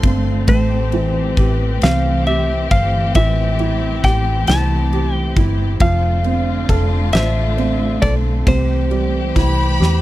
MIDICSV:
0, 0, Header, 1, 7, 480
1, 0, Start_track
1, 0, Tempo, 887574
1, 261, Time_signature, 6, 3, 24, 8
1, 5417, End_track
2, 0, Start_track
2, 0, Title_t, "Violin section"
2, 0, Program_c, 0, 48
2, 0, Note_on_c, 0, 84, 91
2, 146, Note_off_c, 0, 84, 0
2, 5066, Note_on_c, 0, 83, 113
2, 5417, Note_off_c, 0, 83, 0
2, 5417, End_track
3, 0, Start_track
3, 0, Title_t, "Electric slide guitar"
3, 0, Program_c, 1, 29
3, 264, Note_on_c, 1, 72, 74
3, 751, Note_off_c, 1, 72, 0
3, 751, Note_on_c, 1, 71, 74
3, 992, Note_on_c, 1, 77, 99
3, 1009, Note_off_c, 1, 71, 0
3, 1225, Note_off_c, 1, 77, 0
3, 1227, Note_on_c, 1, 76, 83
3, 1465, Note_off_c, 1, 76, 0
3, 1467, Note_on_c, 1, 77, 97
3, 1705, Note_off_c, 1, 77, 0
3, 1707, Note_on_c, 1, 76, 93
3, 2187, Note_on_c, 1, 79, 92
3, 2199, Note_off_c, 1, 76, 0
3, 2421, Note_off_c, 1, 79, 0
3, 2423, Note_on_c, 1, 81, 103
3, 2786, Note_off_c, 1, 81, 0
3, 2786, Note_on_c, 1, 79, 103
3, 2938, Note_off_c, 1, 79, 0
3, 3145, Note_on_c, 1, 77, 100
3, 3855, Note_off_c, 1, 77, 0
3, 3857, Note_on_c, 1, 76, 96
3, 4335, Note_off_c, 1, 76, 0
3, 4337, Note_on_c, 1, 74, 89
3, 4402, Note_off_c, 1, 74, 0
3, 4587, Note_on_c, 1, 72, 73
3, 5417, Note_off_c, 1, 72, 0
3, 5417, End_track
4, 0, Start_track
4, 0, Title_t, "Felt piano"
4, 0, Program_c, 2, 0
4, 0, Control_c, 2, 64, 127
4, 0, Note_on_c, 2, 48, 62
4, 0, Note_on_c, 2, 60, 57
4, 0, Note_on_c, 2, 69, 52
4, 18, Note_off_c, 2, 60, 0
4, 18, Note_on_c, 2, 60, 50
4, 240, Note_off_c, 2, 48, 0
4, 245, Note_off_c, 2, 69, 0
4, 253, Note_off_c, 2, 60, 0
4, 262, Note_on_c, 2, 57, 61
4, 267, Control_c, 2, 64, 0
4, 357, Control_c, 2, 64, 127
4, 505, Note_on_c, 2, 52, 51
4, 747, Note_on_c, 2, 67, 55
4, 990, Note_on_c, 2, 60, 54
4, 1222, Note_off_c, 2, 67, 0
4, 1230, Note_on_c, 2, 67, 54
4, 1447, Note_off_c, 2, 52, 0
4, 1686, Note_off_c, 2, 57, 0
4, 1709, Note_on_c, 2, 52, 70
4, 1927, Note_off_c, 2, 60, 0
4, 1947, Note_on_c, 2, 64, 56
4, 2165, Note_off_c, 2, 67, 0
4, 2189, Note_on_c, 2, 67, 60
4, 2414, Note_off_c, 2, 64, 0
4, 2422, Note_on_c, 2, 64, 56
4, 2657, Note_off_c, 2, 67, 0
4, 2665, Note_on_c, 2, 67, 56
4, 2897, Note_off_c, 2, 64, 0
4, 2905, Note_on_c, 2, 64, 57
4, 3118, Note_off_c, 2, 52, 0
4, 3126, Note_off_c, 2, 67, 0
4, 3134, Note_off_c, 2, 64, 0
4, 3140, Note_on_c, 2, 53, 65
4, 3144, Control_c, 2, 64, 0
4, 3229, Control_c, 2, 64, 127
4, 3380, Note_on_c, 2, 60, 59
4, 3619, Note_on_c, 2, 69, 62
4, 3857, Note_on_c, 2, 72, 63
4, 4088, Note_off_c, 2, 60, 0
4, 4096, Note_on_c, 2, 60, 53
4, 4328, Note_off_c, 2, 69, 0
4, 4336, Note_on_c, 2, 69, 58
4, 4557, Note_off_c, 2, 72, 0
4, 4558, Note_off_c, 2, 53, 0
4, 4564, Note_off_c, 2, 60, 0
4, 4571, Note_off_c, 2, 69, 0
4, 4579, Note_on_c, 2, 48, 68
4, 4586, Control_c, 2, 64, 0
4, 4675, Control_c, 2, 64, 127
4, 4819, Note_on_c, 2, 55, 52
4, 5061, Note_on_c, 2, 64, 55
4, 5300, Note_on_c, 2, 67, 56
4, 5417, Note_off_c, 2, 48, 0
4, 5417, Note_off_c, 2, 55, 0
4, 5417, Note_off_c, 2, 64, 0
4, 5417, Note_off_c, 2, 67, 0
4, 5417, End_track
5, 0, Start_track
5, 0, Title_t, "String section"
5, 0, Program_c, 3, 48
5, 0, Note_on_c, 3, 50, 83
5, 0, Note_on_c, 3, 57, 64
5, 0, Note_on_c, 3, 60, 75
5, 0, Note_on_c, 3, 65, 84
5, 242, Note_off_c, 3, 50, 0
5, 243, Note_off_c, 3, 65, 0
5, 262, Note_on_c, 3, 52, 73
5, 262, Note_on_c, 3, 67, 82
5, 3117, Note_off_c, 3, 52, 0
5, 3117, Note_off_c, 3, 67, 0
5, 3122, Note_off_c, 3, 57, 0
5, 3146, Note_on_c, 3, 57, 79
5, 3147, Note_on_c, 3, 50, 79
5, 3151, Note_on_c, 3, 65, 89
5, 4569, Note_off_c, 3, 50, 0
5, 4571, Note_off_c, 3, 65, 0
5, 4578, Note_on_c, 3, 67, 81
5, 4579, Note_on_c, 3, 52, 82
5, 5417, Note_off_c, 3, 52, 0
5, 5417, Note_off_c, 3, 57, 0
5, 5417, Note_off_c, 3, 60, 0
5, 5417, Note_off_c, 3, 67, 0
5, 5417, End_track
6, 0, Start_track
6, 0, Title_t, "Fingered electric bass"
6, 0, Program_c, 4, 33
6, 19, Note_on_c, 4, 31, 88
6, 246, Note_off_c, 4, 31, 0
6, 259, Note_on_c, 4, 33, 99
6, 722, Note_off_c, 4, 33, 0
6, 744, Note_on_c, 4, 33, 87
6, 971, Note_off_c, 4, 33, 0
6, 989, Note_on_c, 4, 36, 90
6, 1448, Note_off_c, 4, 36, 0
6, 1466, Note_on_c, 4, 31, 80
6, 1692, Note_off_c, 4, 31, 0
6, 1707, Note_on_c, 4, 33, 97
6, 2163, Note_off_c, 4, 33, 0
6, 2185, Note_on_c, 4, 33, 91
6, 2409, Note_off_c, 4, 33, 0
6, 2425, Note_on_c, 4, 36, 98
6, 2879, Note_off_c, 4, 36, 0
6, 2902, Note_on_c, 4, 31, 86
6, 3125, Note_off_c, 4, 31, 0
6, 3139, Note_on_c, 4, 29, 104
6, 3596, Note_off_c, 4, 29, 0
6, 3618, Note_on_c, 4, 29, 95
6, 3843, Note_off_c, 4, 29, 0
6, 3859, Note_on_c, 4, 33, 97
6, 4317, Note_off_c, 4, 33, 0
6, 4339, Note_on_c, 4, 35, 82
6, 4565, Note_off_c, 4, 35, 0
6, 4581, Note_on_c, 4, 36, 105
6, 5040, Note_off_c, 4, 36, 0
6, 5063, Note_on_c, 4, 36, 89
6, 5289, Note_off_c, 4, 36, 0
6, 5301, Note_on_c, 4, 40, 93
6, 5417, Note_off_c, 4, 40, 0
6, 5417, End_track
7, 0, Start_track
7, 0, Title_t, "Drums"
7, 19, Note_on_c, 9, 36, 97
7, 19, Note_on_c, 9, 51, 60
7, 73, Note_off_c, 9, 36, 0
7, 73, Note_off_c, 9, 51, 0
7, 257, Note_on_c, 9, 51, 75
7, 259, Note_on_c, 9, 36, 115
7, 311, Note_off_c, 9, 51, 0
7, 313, Note_off_c, 9, 36, 0
7, 498, Note_on_c, 9, 51, 38
7, 552, Note_off_c, 9, 51, 0
7, 741, Note_on_c, 9, 51, 55
7, 742, Note_on_c, 9, 36, 84
7, 795, Note_off_c, 9, 51, 0
7, 796, Note_off_c, 9, 36, 0
7, 982, Note_on_c, 9, 51, 70
7, 994, Note_on_c, 9, 38, 110
7, 1036, Note_off_c, 9, 51, 0
7, 1048, Note_off_c, 9, 38, 0
7, 1226, Note_on_c, 9, 51, 40
7, 1280, Note_off_c, 9, 51, 0
7, 1465, Note_on_c, 9, 51, 61
7, 1466, Note_on_c, 9, 36, 95
7, 1519, Note_off_c, 9, 51, 0
7, 1521, Note_off_c, 9, 36, 0
7, 1702, Note_on_c, 9, 51, 75
7, 1705, Note_on_c, 9, 36, 112
7, 1756, Note_off_c, 9, 51, 0
7, 1759, Note_off_c, 9, 36, 0
7, 1941, Note_on_c, 9, 51, 38
7, 1995, Note_off_c, 9, 51, 0
7, 2184, Note_on_c, 9, 36, 78
7, 2184, Note_on_c, 9, 51, 57
7, 2193, Note_on_c, 9, 38, 36
7, 2238, Note_off_c, 9, 36, 0
7, 2238, Note_off_c, 9, 51, 0
7, 2247, Note_off_c, 9, 38, 0
7, 2419, Note_on_c, 9, 51, 76
7, 2431, Note_on_c, 9, 38, 115
7, 2473, Note_off_c, 9, 51, 0
7, 2486, Note_off_c, 9, 38, 0
7, 2664, Note_on_c, 9, 51, 37
7, 2718, Note_off_c, 9, 51, 0
7, 2901, Note_on_c, 9, 51, 63
7, 2902, Note_on_c, 9, 36, 91
7, 2955, Note_off_c, 9, 51, 0
7, 2956, Note_off_c, 9, 36, 0
7, 3137, Note_on_c, 9, 51, 70
7, 3139, Note_on_c, 9, 36, 110
7, 3191, Note_off_c, 9, 51, 0
7, 3193, Note_off_c, 9, 36, 0
7, 3376, Note_on_c, 9, 51, 38
7, 3430, Note_off_c, 9, 51, 0
7, 3618, Note_on_c, 9, 36, 81
7, 3619, Note_on_c, 9, 51, 62
7, 3672, Note_off_c, 9, 36, 0
7, 3673, Note_off_c, 9, 51, 0
7, 3854, Note_on_c, 9, 51, 75
7, 3867, Note_on_c, 9, 38, 113
7, 3908, Note_off_c, 9, 51, 0
7, 3921, Note_off_c, 9, 38, 0
7, 4100, Note_on_c, 9, 51, 38
7, 4154, Note_off_c, 9, 51, 0
7, 4338, Note_on_c, 9, 51, 62
7, 4340, Note_on_c, 9, 36, 91
7, 4392, Note_off_c, 9, 51, 0
7, 4394, Note_off_c, 9, 36, 0
7, 4580, Note_on_c, 9, 36, 118
7, 4581, Note_on_c, 9, 51, 76
7, 4634, Note_off_c, 9, 36, 0
7, 4635, Note_off_c, 9, 51, 0
7, 4819, Note_on_c, 9, 51, 36
7, 4873, Note_off_c, 9, 51, 0
7, 5062, Note_on_c, 9, 36, 80
7, 5063, Note_on_c, 9, 51, 60
7, 5072, Note_on_c, 9, 38, 38
7, 5116, Note_off_c, 9, 36, 0
7, 5117, Note_off_c, 9, 51, 0
7, 5126, Note_off_c, 9, 38, 0
7, 5312, Note_on_c, 9, 38, 58
7, 5366, Note_off_c, 9, 38, 0
7, 5417, End_track
0, 0, End_of_file